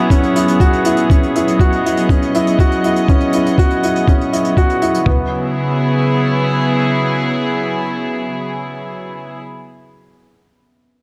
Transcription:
0.00 5.07 F#3 medium
0.00 5.07 B3 medium
0.00 0.11 C#4 medium
0.00 0.36 E4 medium
0.00 1.63 E4 medium
0.00 0.60 F#4 loud
0.00 5.07 G#4 medium
0.10 0.34 C#4 medium
0.10 kick medium
0.10 closed hi-hat medium
0.23 closed hi-hat soft
0.36 0.50 E4 medium
0.36 closed hi-hat medium
0.48 closed hi-hat soft
0.60 0.74 F#4 medium
0.60 kick medium
0.60 closed hi-hat soft
0.73 closed hi-hat soft
0.84 1.09 E4 medium
0.84 closed hi-hat medium
0.97 closed hi-hat soft
1.10 1.34 C#4 medium
1.10 kick medium
1.10 closed hi-hat soft
1.23 closed hi-hat soft
1.35 1.59 E4 medium
1.35 closed hi-hat medium
1.48 5.07 D#5 medium
1.48 closed hi-hat soft
1.60 1.74 F#4 medium
1.60 kick medium
1.60 closed hi-hat soft
1.72 closed hi-hat soft
1.85 2.08 E4 medium
1.85 closed hi-hat medium
1.97 closed hi-hat soft
2.09 2.33 C#4 medium
2.09 kick medium
2.09 closed hi-hat soft
2.22 closed hi-hat soft
2.34 2.58 E4 medium
2.34 closed hi-hat medium
2.47 closed hi-hat soft
2.59 2.73 F#4 medium
2.59 kick medium
2.59 closed hi-hat soft
2.71 closed hi-hat soft
2.84 3.07 E4 medium
2.84 closed hi-hat medium
2.96 closed hi-hat soft
3.08 3.32 C#4 medium
3.08 kick medium
3.08 closed hi-hat soft
3.20 closed hi-hat soft
3.33 3.48 E4 medium
3.33 closed hi-hat medium
3.46 closed hi-hat soft
3.58 3.72 F#4 medium
3.58 kick medium
3.58 closed hi-hat soft
3.70 closed hi-hat soft
3.83 4.07 E4 medium
3.83 closed hi-hat medium
3.96 closed hi-hat soft
4.08 4.31 C#4 medium
4.08 kick medium
4.08 closed hi-hat soft
4.21 closed hi-hat soft
4.33 4.56 E4 medium
4.33 closed hi-hat medium
4.44 closed hi-hat soft
4.57 4.71 F#4 medium
4.57 kick medium
4.57 closed hi-hat soft
4.70 closed hi-hat soft
4.82 5.05 E4 medium
4.82 closed hi-hat medium
4.94 closed hi-hat soft
5.06 9.15 C#3 medium
5.06 5.29 B3 medium
5.06 kick medium
5.06 floor tom medium
5.14 9.22 F#3 medium
5.22 9.30 B3 medium
5.29 9.38 E4 medium
5.36 9.45 G#4 medium

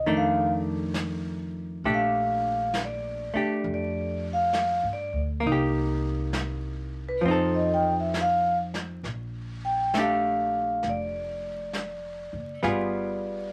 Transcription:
0.06 1.81 F2 medium
0.06 1.85 D#3 soft
0.06 1.84 A3 soft
0.06 1.85 D4 soft
0.06 brush sweep soft
0.17 0.49 F5 medium
0.94 snare soft
0.94 hi-hat pedal soft
1.84 3.30 A#1 medium
1.84 3.32 A3 soft
1.84 3.34 D4 soft
1.84 3.36 G4 soft
1.84 brush sweep soft
1.94 2.75 F5 medium
2.74 snare soft
2.74 hi-hat pedal soft
2.85 3.65 D5 medium
3.34 5.40 A3 soft
3.34 5.44 D4 soft
3.34 5.45 G4 soft
3.34 muted upright bass stroke soft
3.64 4.80 F2 medium
3.64 brush sweep soft
3.74 4.25 D5 medium
4.33 4.84 F5 medium
4.53 snare soft
4.53 hi-hat pedal soft
4.83 5.11 G2 soft
4.93 5.20 D5 medium
5.13 5.41 D2 medium
5.40 7.19 C2 medium
5.40 7.22 A#3 soft
5.40 brush sweep soft
5.47 7.25 D#4 soft
5.52 7.28 G4 soft
6.33 snare soft
6.33 hi-hat pedal soft
7.09 7.23 B4 medium
7.21 9.00 F2 medium
7.21 9.03 F3 soft
7.21 brush sweep soft
7.26 9.05 C4 soft
7.26 9.07 D#4 soft
7.31 9.08 A4 soft
7.31 7.56 C5 medium
7.54 7.83 D#5 soft
7.74 7.93 G5 medium
8.00 8.14 E5 medium
8.14 snare soft
8.14 hi-hat pedal soft
8.21 8.55 F5 medium
8.74 snare soft
9.03 10.80 A#1 medium
9.03 brush sweep soft
9.03 snare soft
9.65 9.96 G5 medium
9.94 12.62 A3 soft
9.94 12.63 D4 soft
9.94 snare soft
9.94 hi-hat pedal soft
9.99 12.64 G4 soft
9.99 10.90 F5 medium
10.83 12.30 F1 medium
10.83 brush sweep soft
10.83 snare soft
10.89 12.67 D5 medium
11.73 snare soft
11.73 hi-hat pedal soft
12.33 12.62 F#1 soft
12.63 13.53 G1 medium
12.63 13.53 G3 soft
12.63 13.53 B3 soft
12.63 13.53 F4 soft
12.63 13.53 G#4 soft
12.63 brush sweep soft
12.63 snare soft
12.68 13.53 D5 medium

